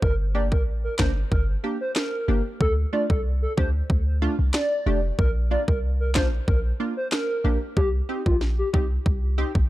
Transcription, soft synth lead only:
0, 0, Header, 1, 2, 480
1, 0, Start_track
1, 0, Tempo, 645161
1, 19, Time_signature, 4, 2, 24, 8
1, 7213, End_track
2, 0, Start_track
2, 0, Title_t, "Soft synth lead"
2, 0, Program_c, 0, 80
2, 18, Note_on_c, 0, 70, 97
2, 108, Note_off_c, 0, 70, 0
2, 258, Note_on_c, 0, 74, 80
2, 348, Note_off_c, 0, 74, 0
2, 385, Note_on_c, 0, 70, 69
2, 465, Note_off_c, 0, 70, 0
2, 626, Note_on_c, 0, 70, 77
2, 706, Note_off_c, 0, 70, 0
2, 739, Note_on_c, 0, 72, 78
2, 829, Note_off_c, 0, 72, 0
2, 979, Note_on_c, 0, 70, 78
2, 1069, Note_off_c, 0, 70, 0
2, 1346, Note_on_c, 0, 72, 77
2, 1426, Note_off_c, 0, 72, 0
2, 1460, Note_on_c, 0, 70, 89
2, 1804, Note_off_c, 0, 70, 0
2, 1939, Note_on_c, 0, 69, 110
2, 2029, Note_off_c, 0, 69, 0
2, 2179, Note_on_c, 0, 74, 87
2, 2269, Note_off_c, 0, 74, 0
2, 2307, Note_on_c, 0, 69, 72
2, 2386, Note_off_c, 0, 69, 0
2, 2546, Note_on_c, 0, 69, 83
2, 2626, Note_off_c, 0, 69, 0
2, 2659, Note_on_c, 0, 72, 82
2, 2748, Note_off_c, 0, 72, 0
2, 3379, Note_on_c, 0, 74, 91
2, 3724, Note_off_c, 0, 74, 0
2, 3859, Note_on_c, 0, 70, 99
2, 3949, Note_off_c, 0, 70, 0
2, 4099, Note_on_c, 0, 74, 77
2, 4188, Note_off_c, 0, 74, 0
2, 4226, Note_on_c, 0, 70, 72
2, 4306, Note_off_c, 0, 70, 0
2, 4466, Note_on_c, 0, 70, 75
2, 4546, Note_off_c, 0, 70, 0
2, 4579, Note_on_c, 0, 72, 82
2, 4669, Note_off_c, 0, 72, 0
2, 4819, Note_on_c, 0, 70, 78
2, 4909, Note_off_c, 0, 70, 0
2, 5186, Note_on_c, 0, 72, 76
2, 5266, Note_off_c, 0, 72, 0
2, 5299, Note_on_c, 0, 70, 91
2, 5644, Note_off_c, 0, 70, 0
2, 5778, Note_on_c, 0, 67, 117
2, 5868, Note_off_c, 0, 67, 0
2, 6019, Note_on_c, 0, 67, 82
2, 6108, Note_off_c, 0, 67, 0
2, 6146, Note_on_c, 0, 65, 75
2, 6225, Note_off_c, 0, 65, 0
2, 6386, Note_on_c, 0, 67, 81
2, 6466, Note_off_c, 0, 67, 0
2, 6499, Note_on_c, 0, 67, 85
2, 6589, Note_off_c, 0, 67, 0
2, 7213, End_track
0, 0, End_of_file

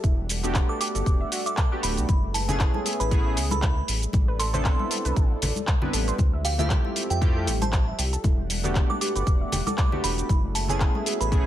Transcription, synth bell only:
0, 0, Header, 1, 2, 480
1, 0, Start_track
1, 0, Tempo, 512821
1, 35, Time_signature, 4, 2, 24, 8
1, 10730, End_track
2, 0, Start_track
2, 0, Title_t, "Synth bell"
2, 0, Program_c, 0, 98
2, 648, Note_on_c, 0, 86, 89
2, 733, Note_off_c, 0, 86, 0
2, 755, Note_on_c, 0, 86, 92
2, 1235, Note_off_c, 0, 86, 0
2, 1367, Note_on_c, 0, 86, 90
2, 1466, Note_off_c, 0, 86, 0
2, 1715, Note_on_c, 0, 83, 92
2, 2008, Note_off_c, 0, 83, 0
2, 2193, Note_on_c, 0, 81, 96
2, 2301, Note_off_c, 0, 81, 0
2, 2327, Note_on_c, 0, 81, 89
2, 2426, Note_off_c, 0, 81, 0
2, 2808, Note_on_c, 0, 83, 94
2, 2906, Note_off_c, 0, 83, 0
2, 3288, Note_on_c, 0, 83, 91
2, 3688, Note_off_c, 0, 83, 0
2, 4113, Note_on_c, 0, 84, 97
2, 4221, Note_off_c, 0, 84, 0
2, 4247, Note_on_c, 0, 84, 92
2, 4914, Note_off_c, 0, 84, 0
2, 6035, Note_on_c, 0, 77, 96
2, 6142, Note_off_c, 0, 77, 0
2, 6169, Note_on_c, 0, 77, 89
2, 6266, Note_off_c, 0, 77, 0
2, 6649, Note_on_c, 0, 79, 95
2, 6746, Note_off_c, 0, 79, 0
2, 7129, Note_on_c, 0, 81, 91
2, 7226, Note_off_c, 0, 81, 0
2, 8328, Note_on_c, 0, 86, 91
2, 8414, Note_off_c, 0, 86, 0
2, 8435, Note_on_c, 0, 86, 94
2, 8915, Note_off_c, 0, 86, 0
2, 9049, Note_on_c, 0, 86, 94
2, 9146, Note_off_c, 0, 86, 0
2, 9395, Note_on_c, 0, 83, 95
2, 9689, Note_off_c, 0, 83, 0
2, 9875, Note_on_c, 0, 81, 98
2, 9982, Note_off_c, 0, 81, 0
2, 10010, Note_on_c, 0, 81, 92
2, 10107, Note_off_c, 0, 81, 0
2, 10488, Note_on_c, 0, 83, 93
2, 10586, Note_off_c, 0, 83, 0
2, 10730, End_track
0, 0, End_of_file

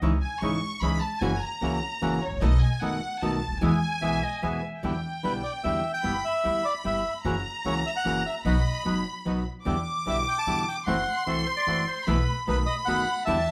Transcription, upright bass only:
0, 0, Header, 1, 2, 480
1, 0, Start_track
1, 0, Key_signature, 4, "major"
1, 0, Tempo, 401606
1, 22, Time_signature, 3, 2, 24, 8
1, 5775, Key_signature, 1, "minor"
1, 16148, End_track
2, 0, Start_track
2, 0, Title_t, "Upright bass"
2, 0, Program_c, 0, 32
2, 20, Note_on_c, 0, 37, 85
2, 223, Note_off_c, 0, 37, 0
2, 494, Note_on_c, 0, 32, 57
2, 699, Note_off_c, 0, 32, 0
2, 969, Note_on_c, 0, 37, 58
2, 1176, Note_off_c, 0, 37, 0
2, 1448, Note_on_c, 0, 30, 88
2, 1654, Note_off_c, 0, 30, 0
2, 1931, Note_on_c, 0, 37, 56
2, 2135, Note_off_c, 0, 37, 0
2, 2413, Note_on_c, 0, 30, 64
2, 2615, Note_off_c, 0, 30, 0
2, 2713, Note_on_c, 0, 32, 53
2, 2768, Note_off_c, 0, 32, 0
2, 2776, Note_on_c, 0, 33, 67
2, 2823, Note_off_c, 0, 33, 0
2, 2830, Note_on_c, 0, 34, 78
2, 2884, Note_off_c, 0, 34, 0
2, 2891, Note_on_c, 0, 35, 102
2, 3093, Note_off_c, 0, 35, 0
2, 3367, Note_on_c, 0, 30, 60
2, 3570, Note_off_c, 0, 30, 0
2, 3851, Note_on_c, 0, 35, 61
2, 4052, Note_off_c, 0, 35, 0
2, 4150, Note_on_c, 0, 37, 50
2, 4207, Note_off_c, 0, 37, 0
2, 4214, Note_on_c, 0, 38, 63
2, 4261, Note_off_c, 0, 38, 0
2, 4269, Note_on_c, 0, 39, 77
2, 4324, Note_off_c, 0, 39, 0
2, 4331, Note_on_c, 0, 40, 93
2, 4532, Note_off_c, 0, 40, 0
2, 4810, Note_on_c, 0, 35, 55
2, 5012, Note_off_c, 0, 35, 0
2, 5299, Note_on_c, 0, 40, 65
2, 5498, Note_off_c, 0, 40, 0
2, 5781, Note_on_c, 0, 40, 78
2, 5980, Note_off_c, 0, 40, 0
2, 6266, Note_on_c, 0, 35, 52
2, 6463, Note_off_c, 0, 35, 0
2, 6749, Note_on_c, 0, 40, 54
2, 6945, Note_off_c, 0, 40, 0
2, 7225, Note_on_c, 0, 31, 74
2, 7423, Note_off_c, 0, 31, 0
2, 7707, Note_on_c, 0, 38, 55
2, 7905, Note_off_c, 0, 38, 0
2, 8182, Note_on_c, 0, 31, 54
2, 8382, Note_off_c, 0, 31, 0
2, 8661, Note_on_c, 0, 30, 87
2, 8861, Note_off_c, 0, 30, 0
2, 9141, Note_on_c, 0, 37, 55
2, 9341, Note_off_c, 0, 37, 0
2, 9624, Note_on_c, 0, 30, 54
2, 9823, Note_off_c, 0, 30, 0
2, 10098, Note_on_c, 0, 35, 88
2, 10299, Note_off_c, 0, 35, 0
2, 10581, Note_on_c, 0, 30, 52
2, 10782, Note_off_c, 0, 30, 0
2, 11066, Note_on_c, 0, 35, 50
2, 11265, Note_off_c, 0, 35, 0
2, 11550, Note_on_c, 0, 40, 80
2, 11749, Note_off_c, 0, 40, 0
2, 12031, Note_on_c, 0, 35, 51
2, 12230, Note_off_c, 0, 35, 0
2, 12509, Note_on_c, 0, 40, 58
2, 12709, Note_off_c, 0, 40, 0
2, 12990, Note_on_c, 0, 30, 83
2, 13189, Note_off_c, 0, 30, 0
2, 13468, Note_on_c, 0, 36, 55
2, 13668, Note_off_c, 0, 36, 0
2, 13948, Note_on_c, 0, 30, 56
2, 14148, Note_off_c, 0, 30, 0
2, 14430, Note_on_c, 0, 35, 83
2, 14629, Note_off_c, 0, 35, 0
2, 14913, Note_on_c, 0, 35, 57
2, 15110, Note_off_c, 0, 35, 0
2, 15387, Note_on_c, 0, 30, 62
2, 15587, Note_off_c, 0, 30, 0
2, 15867, Note_on_c, 0, 40, 82
2, 16068, Note_off_c, 0, 40, 0
2, 16148, End_track
0, 0, End_of_file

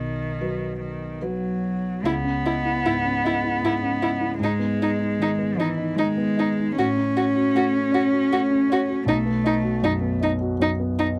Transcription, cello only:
0, 0, Header, 1, 2, 480
1, 0, Start_track
1, 0, Key_signature, 4, "minor"
1, 0, Tempo, 813008
1, 1206, Time_signature, 3, 2, 24, 8
1, 1675, Tempo, 783290
1, 4555, Tempo, 766284
1, 6845, End_track
2, 0, Start_track
2, 0, Title_t, "Cello"
2, 0, Program_c, 0, 42
2, 0, Note_on_c, 0, 51, 54
2, 468, Note_off_c, 0, 51, 0
2, 472, Note_on_c, 0, 51, 42
2, 723, Note_on_c, 0, 54, 52
2, 732, Note_off_c, 0, 51, 0
2, 1216, Note_on_c, 0, 59, 76
2, 1225, Note_off_c, 0, 54, 0
2, 2619, Note_off_c, 0, 59, 0
2, 2623, Note_on_c, 0, 56, 80
2, 3355, Note_on_c, 0, 52, 64
2, 3364, Note_off_c, 0, 56, 0
2, 3585, Note_on_c, 0, 56, 79
2, 3594, Note_off_c, 0, 52, 0
2, 4073, Note_off_c, 0, 56, 0
2, 4077, Note_on_c, 0, 61, 94
2, 5496, Note_off_c, 0, 61, 0
2, 5518, Note_on_c, 0, 57, 87
2, 6221, Note_off_c, 0, 57, 0
2, 6845, End_track
0, 0, End_of_file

